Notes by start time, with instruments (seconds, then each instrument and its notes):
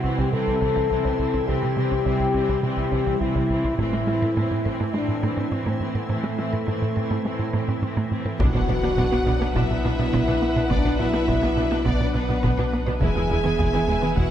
Already playing: cello section C3, ambient pad G3 C4 E4 E5, french horn section F#4
0.04 analog synth bass C2, viola section E3 C4, synth pluck C4
0.18 analog synth bass C2, synth pluck C3, french horn section G4
0.32 cello section C3, analog synth bass C3, viola section E3 C4, french horn section A4
0.47 analog synth bass C2
0.61 analog synth bass C2, synth pluck C3, viola section E3 C4
0.75 analog synth bass C2, synth pluck E3
0.90 analog synth bass C2, cello section C3, viola section E3 C4, synth pluck E3
1.04 analog synth bass C2, synth pluck C3
1.19 analog synth bass C2, viola section E3 C4
1.34 analog synth bass C2, synth pluck C4
1.47 analog synth bass C2, cello section C3, synth pluck C3, viola section E3 C4, french horn section G4
1.62 analog synth bass C3, synth pluck G3
1.77 analog synth bass C3, viola section E3 C4, synth pluck G3
1.91 analog synth bass C2, synth pluck C4
2.05 analog synth bass C2, cello section C3, synth pluck C3, viola section E3 C4
2.20 analog synth bass C2
2.34 analog synth bass C2, viola section E3 C4, synth pluck C4
2.49 analog synth bass C2, synth pluck C3
2.63 analog synth bass C3, cello section C3, viola section E3 C4, french horn section G4
2.77 analog synth bass C2
2.92 analog synth bass C2, synth pluck C3, viola section E3 C4
3.06 analog synth bass C2, synth pluck E3
3.20 analog synth bass C2, cello section C3, synth pluck E3, viola section E3 C4, french horn section E4
3.35 analog synth bass C2, synth pluck C3
3.50 analog synth bass C2, viola section E3 C4
3.64 analog synth bass C2, synth pluck C4
3.78 analog synth bass A2, cello section A2, ambient pad E3 C4 E4 E5, viola section E3 C4, synth pluck A3, french horn section E4, taiko
3.93 analog synth bass A3, synth pluck E4
4.07 viola section E3 C4, analog synth bass A3, synth pluck E4
4.22 analog synth bass A2, synth pluck A4
4.36 cello section A2, analog synth bass A2, viola section E3 C4, synth pluck A3
4.51 analog synth bass A2
4.65 analog synth bass A2, viola section E3 C4, synth pluck A4, taiko
4.80 analog synth bass A2, synth pluck A3
4.93 cello section A2, viola section E3 C4, analog synth bass A3, french horn section D4
5.09 analog synth bass A2
5.22 analog synth bass A2, viola section E3 C4, synth pluck A3
5.37 analog synth bass A2, synth pluck C4
5.51 analog synth bass A2, cello section A2, viola section E3 C4, french horn section C4, synth pluck C4
5.66 analog synth bass A2, synth pluck A3
5.80 analog synth bass A2, viola section E3 C4
5.94 analog synth bass A2, french horn section B3, synth pluck A4
6.08 cello section A2, analog synth bass A2, viola section E3 C4, french horn section A3, synth pluck A3
6.24 analog synth bass A3, synth pluck E4
6.38 viola section E3 C4, analog synth bass A3, synth pluck E4
6.52 analog synth bass A2, synth pluck A4
6.67 cello section A2, analog synth bass A2, viola section E3 C4, synth pluck A3
6.82 analog synth bass A2
6.96 analog synth bass A2, viola section E3 C4, synth pluck A4
7.11 analog synth bass A2, synth pluck A3
7.24 cello section A2, viola section E3 C4, analog synth bass A3
7.39 analog synth bass A2
7.53 analog synth bass A2, viola section E3 C4, synth pluck A3
7.68 analog synth bass A2, synth pluck C4
7.82 cello section A2, analog synth bass A2, viola section E3 C4, synth pluck C4
7.97 analog synth bass A2, synth pluck A3
8.11 analog synth bass A2, viola section E3 C4
8.25 analog synth bass A2, synth pluck A4
8.39 double bass section B1, sub bass B1, cello section B2, analog synth bass B2, ambient pad F#3 B3 D4 B4, viola section B3 D4, synth pluck B3, french horn section F#4, violin section B4 F#5, taiko, impact
8.54 cello section B2, analog synth bass B2, viola section B3 D4, synth pluck B4
8.69 double bass section B1, cello section B2, analog synth bass B2, viola section B3 D4, synth pluck B4
8.83 cello section B2, viola section B3 D4, analog synth bass B3, synth pluck F#4
8.97 double bass section B1, analog synth bass B2, cello section B2, viola section B3 D4, synth pluck B3, taiko
9.12 cello section B2, viola section B3 D4, analog synth bass B3, synth pluck F#4
9.26 double bass section B1, analog synth bass B2, cello section B2, viola section B3 D4, synth pluck D4
9.41 cello section B2, viola section B3 D4, analog synth bass B3, synth pluck F#4
9.55 double bass section B1, cello section B2, analog synth bass B2, viola section B3 D4, synth pluck B3, french horn section E4, violin section E5, taiko
9.71 analog synth bass B2
9.84 double bass section B1, cello section B2, analog synth bass B2, viola section B3 D4, synth pluck D4
9.98 cello section B2, analog synth bass B2, viola section B3 D4, synth pluck D4
10.13 double bass section B1, cello section B2, analog synth bass B2, viola section B3 D4, synth pluck B3, taiko
10.28 cello section B2, analog synth bass B2, viola section B3 D4, synth pluck B4
10.42 analog synth bass B3
10.56 analog synth bass B2, cello section B2, viola section B3 D4, synth pluck B4
10.70 double bass section B1, analog synth bass B2, cello section B2, synth pluck B3, viola section B3 D4, french horn section D4, violin section D5, taiko
10.85 analog synth bass B2, cello section B2, viola section B3 D4, synth pluck B4
10.98 double bass section B1, cello section B2, analog synth bass B2, viola section B3 D4, french horn section E4, synth pluck B4, violin section E5
11.13 cello section B2, analog synth bass B3, viola section B3 D4, synth pluck F#4
11.28 double bass section B1, cello section B2, analog synth bass B2, synth pluck B3, viola section B3 D4, taiko
11.42 cello section B2, analog synth bass B3, viola section B3 D4, synth pluck F#4
11.57 double bass section B1, cello section B2, analog synth bass B2, viola section B3 D4, synth pluck D4
11.71 cello section B2, analog synth bass B3, viola section B3 D4, synth pluck F#4
11.85 double bass section B1, analog synth bass B2, cello section B2, synth pluck B3, viola section B3 D4, french horn section D4, violin section D5, taiko
12.00 analog synth bass B2
12.14 double bass section B1, cello section B2, analog synth bass B2, french horn section B3, viola section B3 D4, synth pluck D4, violin section B4
12.29 cello section B2, analog synth bass B2, viola section B3 D4, synth pluck D4
12.43 double bass section B1, cello section B2, analog synth bass B2, synth pluck B3, viola section B3 D4, taiko
12.57 cello section B2, analog synth bass B2, viola section B3 D4, synth pluck B4
12.73 analog synth bass B3
12.86 cello section B2, analog synth bass B2, viola section B3 D4, synth pluck B4
13.01 double bass section E1, sub bass E1, analog synth bass E2, cello section E2, synth pluck E3, ambient pad E3 B3 E4 B4, viola section G#3 E4, french horn section G#4, violin section B4 E5 G#5, taiko
13.15 cello section E2, analog synth bass E2, viola section G#3 E4, synth pluck E4
13.30 double bass section E1, cello section E2, analog synth bass E2, viola section G#3 E4, synth pluck E4
13.44 cello section E2, analog synth bass E3, viola section G#3 E4, synth pluck B3
13.59 double bass section E1, cello section E2, analog synth bass E2, synth pluck E3, viola section G#3 E4, taiko
13.73 cello section E2, analog synth bass E3, viola section G#3 E4, synth pluck B3
13.88 double bass section E1, analog synth bass E2, cello section E2, synth pluck G#3, viola section G#3 E4
14.02 cello section E2, analog synth bass E3, viola section G#3 E4, synth pluck B3
14.16 double bass section E1, analog synth bass E2, cello section E2, synth pluck E3, viola section G#3 E4, french horn section F#4, violin section F#5, taiko